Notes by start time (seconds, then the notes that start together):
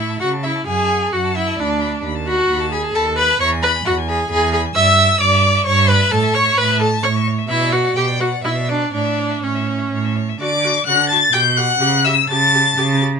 Already playing: A2 E4 E5
0.00 C#6
0.09 A5
0.20 C#3 F#4 F#5 C#6
0.33 A5
0.43 E4 E5 C#6
0.55 A5
0.66 F#2 G#4 F#5 G#5
0.77 A5
0.90 F#5
1.01 A5
1.13 F#2 F#4 F#5
1.24 A5
1.36 E4 E5 F#5
1.46 A5
1.57 D2 D4 D5 B5
1.68 A5
1.81 B5
1.93 A5
2.04 D#2 B5
2.15 A5
2.27 F#4 F#5 B5
2.37 A5
2.49 D#2 B5
2.60 A5
2.72 G#4 G#5 B5
2.83 A5
2.94 D#2 A4 A5 B5
3.06 A5
3.17 B4 B5
3.29 A5
3.40 E2 C#5 B5 C#6
3.53 G#5
3.63 B4 B5
3.75 G#5
3.86 E2 F#4 F#5 B5
3.98 G#5
4.08 G#4 G#5 B5
4.20 G#5
4.30 E2 G#4 G#5 B5
4.42 G#5
4.53 G#4 G#5 B5
4.66 G#5
4.75 G2 D5 E5 E6
4.87 E5
4.98 D5
5.09 E5
5.20 G2 D5 D6
5.32 E5
5.43 D5
5.55 E5
5.65 G2 C#5 D5 C#6
5.78 E5
5.88 B4 D5 B5
6.00 E5
6.11 A2 A4 C#5 A5
6.23 E5
6.33 C#5 C#6
6.45 E5
6.57 A2 B4 C#5 B5
6.70 E5
6.80 A4 C#5 A5
6.93 E5
7.03 A2 C#5 C#6
7.16 E5
7.27 C#5
7.38 E5
7.49 B2 E4 B4 E5
7.61 D5
7.72 F#4 B4 F#5
7.84 D5
7.96 B2 G4 B4 G5
8.07 D5
8.19 F#4 B4 F#5
8.31 D5
8.43 B2 E4 B4 E5
8.55 D5
8.67 D4 B4 D5
8.80 D5
8.92 A2 D4 C#5 D5
9.05 E5
9.18 C#5
9.30 E5
9.42 A2 C#4 C#5
9.55 E5
9.67 C#5
9.78 E5
9.91 A2 C#5
10.04 E5
10.16 C#5
10.29 E5
10.40 D3 F#4 D5 D6
10.64 F#4
10.86 D3 F#4 F#5 F#6
11.10 F#4 A5 A6
11.32 B2 G4 G5 G6
11.57 G4 F#5 F#6
11.80 C#3 G4
12.04 G4 E5 E6
12.29 C#3 G4 A5 A6
12.55 G4
12.77 C#3 G4
13.01 G4